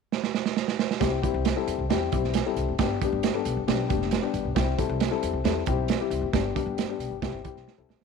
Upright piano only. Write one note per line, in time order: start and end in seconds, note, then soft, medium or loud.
1.00 1.17 G3 medium
1.00 1.17 C4 medium
1.00 1.17 E4 medium
1.00 1.17 G4 medium
1.22 1.47 G3 medium
1.22 1.47 C4 medium
1.22 1.47 E4 medium
1.22 1.47 G4 medium
1.56 1.81 G3 medium
1.56 1.81 C4 medium
1.56 1.81 E4 medium
1.56 1.81 A4 medium
1.89 2.06 G3 medium
1.89 2.06 C4 medium
1.89 2.06 E4 medium
1.89 2.06 G4 medium
2.12 2.37 G3 medium
2.12 2.37 C4 medium
2.12 2.37 E4 medium
2.12 2.37 G4 medium
2.46 2.70 G3 medium
2.46 2.70 C4 medium
2.46 2.70 E4 medium
2.46 2.70 A4 medium
2.79 2.95 G3 medium
2.79 2.95 B3 medium
2.79 2.95 D4 medium
2.79 2.95 G4 medium
3.02 3.26 G3 medium
3.02 3.26 B3 medium
3.02 3.26 D4 medium
3.02 3.26 G4 medium
3.34 3.59 G3 medium
3.34 3.59 B3 medium
3.34 3.59 D4 medium
3.34 3.59 A4 medium
3.67 3.84 G3 medium
3.67 3.84 B3 medium
3.67 3.84 D4 medium
3.67 3.84 G4 medium
3.89 4.14 G3 medium
3.89 4.14 B3 medium
3.89 4.14 D4 medium
3.89 4.14 G4 medium
4.22 4.47 G3 medium
4.22 4.47 B3 medium
4.22 4.47 D4 medium
4.22 4.47 G4 medium
4.55 4.72 G3 medium
4.55 4.72 C4 medium
4.55 4.72 E4 medium
4.55 4.72 G4 medium
4.78 5.03 G3 medium
4.78 5.03 C4 medium
4.78 5.03 E4 medium
4.78 5.03 A4 medium
5.10 5.36 G3 medium
5.10 5.36 C4 medium
5.10 5.36 E4 medium
5.10 5.36 A4 medium
5.45 5.61 G3 medium
5.45 5.61 C4 medium
5.45 5.61 E4 medium
5.45 5.61 A4 medium
5.67 5.92 G3 medium
5.67 5.92 C4 medium
5.67 5.92 E4 medium
5.67 5.92 G4 medium
6.00 6.25 G3 medium
6.00 6.25 C4 medium
6.00 6.25 E4 medium
6.00 6.25 G4 medium
6.33 6.50 G3 medium
6.33 6.50 B3 medium
6.33 6.50 D4 medium
6.33 6.50 G4 medium
6.55 6.80 G3 medium
6.55 6.80 B3 medium
6.55 6.80 D4 medium
6.55 6.80 G4 medium
6.89 7.13 G3 medium
6.89 7.14 B3 medium
6.89 7.14 D4 medium
6.89 7.14 G4 medium
7.22 7.38 G3 medium
7.22 7.38 C4 medium
7.22 7.38 E4 medium
7.22 7.38 G4 medium
7.44 7.69 G3 medium
7.44 7.69 C4 medium
7.44 7.69 E4 medium
7.44 7.69 G4 medium
7.78 8.02 G3 medium
7.78 8.03 C4 medium
7.78 8.03 E4 medium
7.78 8.02 A4 medium